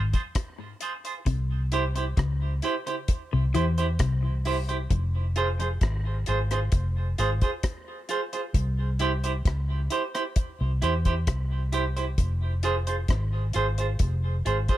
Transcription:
Already playing: G#1
0.14 F4 G#4 C5, kick, closed hi-hat
0.35 kick, cross-stick, closed hi-hat
0.81 F4 G#4 C5, closed hi-hat
1.05 F4 G#4 C5, closed hi-hat
1.26 C2 C3, kick, closed hi-hat
1.72 E4 G4 C5, closed hi-hat
1.96 E4 G4 C5, closed hi-hat
2.17 C#2 C#3, kick, cross-stick, closed hi-hat
2.62 E4 G4 C5, closed hi-hat
2.87 E4 G4 C5, closed hi-hat
3.08 kick, closed hi-hat
3.33 C2 C3
3.54 E2 E3 E4 G4 C5, closed hi-hat
3.78 E4 G4 C5, closed hi-hat
3.99 C2 C3, kick, cross-stick, closed hi-hat
4.45 E4 G4 C5, open hi-hat
4.69 E4 G4 C5, closed hi-hat
4.90 F1 F2, kick, closed hi-hat
5.36 F4 G#4 C5, closed hi-hat
5.60 F4 G#4 C5, closed hi-hat
5.81 G#1, kick, cross-stick, closed hi-hat
6.26 G#1 F4 G#4 C5, closed hi-hat
6.51 F4 G#4 C5, cross-stick, closed hi-hat
6.72 F1, kick, closed hi-hat
7.18 G#1 F4 G#4 C5, closed hi-hat
7.41 F4 G#4 C5, kick, closed hi-hat
7.63 kick, cross-stick, closed hi-hat
8.09 F4 G#4 C5, closed hi-hat
8.33 F4 G#4 C5, closed hi-hat
8.54 C2, kick, closed hi-hat
8.99 E4 G4 C5, closed hi-hat
9.24 E4 G4 C5, closed hi-hat
9.45 C#2, kick, cross-stick, closed hi-hat
9.90 E4 G4 C5, closed hi-hat
10.15 E4 G4 C5, cross-stick, closed hi-hat
10.36 kick, closed hi-hat
10.61 C2
10.82 E2 E4 G4 C5, closed hi-hat
11.05 E4 G4 C5, kick, closed hi-hat
11.27 C2, kick, cross-stick, closed hi-hat
11.72 E4 G4 C5, closed hi-hat
11.97 E4 G4 C5, closed hi-hat
12.18 F1, kick, closed hi-hat
12.63 F4 G#4 C5, closed hi-hat
12.87 F4 G#4 C5, closed hi-hat
13.08 G#1, kick, cross-stick, closed hi-hat
13.53 G#1 F4 G#4 C5, closed hi-hat
13.78 F4 G#4 C5, closed hi-hat
13.99 F1, kick, closed hi-hat
14.45 G#1 F4 G#4 C5, closed hi-hat
14.68 F4 G#4 C5, kick, closed hi-hat

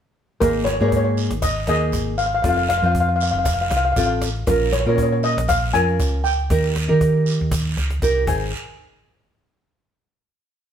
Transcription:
0.40 G#1 A#3 D#4 G#4 A#4, cajon bass, long guiro
0.65 C#5, cajon slap
0.74 C#5
0.80 G#2 A#3 D#4 G#4 C#5, cajon slap
0.89 C#5, cajon bass
0.97 C#5
1.04 C#5
1.17 cajon slap, short guiro
1.31 G#1, cajon slap
1.42 D#5, cajon bass, short guiro, long guiro
1.67 D#2 A#3 D#4 G#4 D#5, cajon slap
1.81 cajon slap
1.92 G#1, cajon bass, short guiro
2.18 F5, cajon slap, short guiro
2.26 F5
2.32 F5, cajon slap
2.42 F1 C4 F4 A4 F5, cajon bass, long guiro
2.49 F5
2.57 F5
2.69 F5, cajon slap
2.78 F5
2.82 F2 C4 F4 C5 F5, cajon slap
2.92 F5, cajon bass
3.00 F5
3.09 F5
3.16 F5
3.20 F5, cajon slap, short guiro
3.31 F1 F5, cajon slap
3.39 F5
3.44 F5, cajon bass, short guiro, long guiro
3.54 F5
3.61 F5
3.70 C2 F5, cajon slap
3.77 F5
3.84 F5, cajon slap
3.92 F5
3.96 A1 C4 F4 A4 F5, cajon bass, short guiro
4.06 F5
4.22 cajon slap, short guiro
4.36 cajon slap
4.47 A#1 C#4 F4 A#4, cajon bass, long guiro
4.72 C#5, cajon slap
4.80 C#5
4.86 A#2 C#4 F4 A#4 C#5, cajon slap
4.96 C#5, cajon bass
5.03 C#5
5.12 C#5
5.23 D#5, cajon slap, short guiro
5.37 A#1, cajon slap
5.48 F5, cajon bass, short guiro, long guiro
5.73 F2 C#4 F4 A#4 G#5, cajon slap
5.88 cajon slap
6.00 C#2, cajon bass, short guiro
6.24 G5, cajon slap, short guiro
6.38 cajon slap
6.50 D#2 D#4 G4 A#4, cajon bass, long guiro
6.76 cajon slap
6.88 D#3 D#4 G4 A#4, cajon slap
7.01 cajon bass
7.26 cajon slap, short guiro
7.40 D#2, cajon slap
7.51 cajon bass, cajon slap, short guiro, long guiro
7.77 C#2, cajon slap
7.90 cajon slap
8.02 C2 D#4 G4 A#4, cajon bass, cajon slap, short guiro
8.27 G#1 D#4 G#4 C5 G#5, cajon bass, long guiro

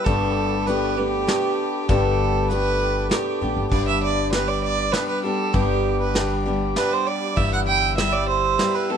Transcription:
Already playing: B5
0.05 G1 G2 D3 A3 B3 D4 G4 A4 G5 D6, kick, closed hi-hat
0.67 A3 B3 D4 G4 B4, closed hi-hat
0.97 A3 B3 D4 G4
1.27 A3 B3 D4 G4, snare, closed hi-hat
1.89 G1 G2 D3 A3 B3 D4 G4 A4 D6, kick, closed hi-hat
2.49 A3 B3 D4 B4, closed hi-hat
2.53 G4
3.10 A3 B3 D4 G4, snare, closed hi-hat
3.41 A1 A3 B3 D4 G4
3.57 G1
3.71 G1 G2 D3 G3 B3 D4 G4 D5 B5 D6, kick, ride
3.87 E5
4.04 D5
4.32 G3 B3 D4 G4 B4, snare, ride
4.48 D5
4.63 D5
4.92 G3 B3 D4 G4 B4, snare, ride
5.08 B4
5.24 G3 B3 D4 G4 A4
5.53 G1 G2 D3 G3 B3 D4 G4, kick, ride
6.01 B4
6.14 G3 B3 D4 G4, snare, ride
6.45 G3 B3 D4 G4
6.76 G3 B3 D4 G4 B4, snare, ride
6.92 C5
7.07 D5
7.36 G1 G2 E3 G3 B3 E4 G4 E5 E6, kick, ride
7.53 F#5
7.67 G5
7.97 G3 E4 G4 E5, snare, ride
8.13 D5
8.28 C5
8.58 G3 B3 E4 G4, snare, ride
8.74 B4
8.89 G3 B3 E4 G4 A4

